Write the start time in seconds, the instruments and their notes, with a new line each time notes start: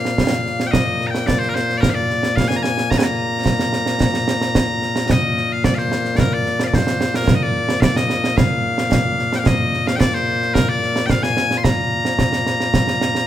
Already playing: bagpipes A#2 A#3 F5
0.05 snare
0.18 concert bass drum, snare
0.46 snare
0.60 snare
0.67 bagpipes G5
0.71 bagpipes D#5, concert bass drum, snare
1.01 snare
1.07 bagpipes G5 A#5
1.15 snare
1.27 bagpipes D5, concert bass drum, snare
1.39 bagpipes C5, snare
1.49 bagpipes A#4
1.55 bagpipes C5, snare
1.69 snare
1.78 bagpipes A#4 D5
1.83 concert bass drum, snare
1.90 bagpipes F5
1.94 bagpipes D5
2.10 snare
2.23 snare
2.36 bagpipes F5, concert bass drum, snare
2.48 bagpipes G#5, snare
2.56 bagpipes A#5
2.63 bagpipes G#5, snare
2.78 snare
2.90 bagpipes A#5, concert bass drum, snare
2.98 bagpipes G#5
3.03 bagpipes A#5
3.46 concert bass drum, snare
3.59 snare
3.73 snare
3.86 snare
4.00 concert bass drum, snare
4.14 snare
4.28 snare
4.41 snare
4.55 concert bass drum, snare
4.82 snare
4.96 snare
5.10 bagpipes D#5, concert bass drum, snare
5.37 snare
5.52 bagpipes F5
5.64 bagpipes D5, concert bass drum, snare
5.75 bagpipes C5 F5, snare
5.92 snare
6.05 snare
6.17 bagpipes A#4 D5, concert bass drum, snare
6.34 bagpipes D5
6.46 snare
6.60 snare
6.64 bagpipes D5 F5
6.74 bagpipes C5, concert bass drum, snare
6.87 snare
7.01 snare
7.14 bagpipes A#4, snare
7.28 concert bass drum, snare
7.35 bagpipes D#5
7.43 bagpipes D5
7.69 snare
7.80 bagpipes D5 F5, concert bass drum, snare
7.96 bagpipes D#5, snare
8.10 snare
8.24 snare
8.37 bagpipes F5, concert bass drum, snare
8.78 snare
8.92 concert bass drum, snare
9.19 snare
9.33 bagpipes G5, snare
9.39 bagpipes F5
9.46 bagpipes D#5, concert bass drum, snare
9.74 snare
9.87 bagpipes F5, snare
9.96 bagpipes D5 G5
10.01 concert bass drum, snare
10.14 bagpipes C5, snare
10.42 snare
10.54 bagpipes A#4, concert bass drum, snare
10.69 bagpipes D5
10.83 snare
10.96 snare
11.06 bagpipes G5, concert bass drum, snare
11.11 bagpipes F5
11.23 bagpipes G#5, snare
11.37 snare
11.51 snare
11.58 bagpipes C6
11.64 bagpipes A#5, concert bass drum, snare
12.05 snare
12.19 concert bass drum, snare
12.33 snare
12.47 snare
12.60 snare
12.74 concert bass drum, snare
12.88 snare
13.01 snare
13.15 snare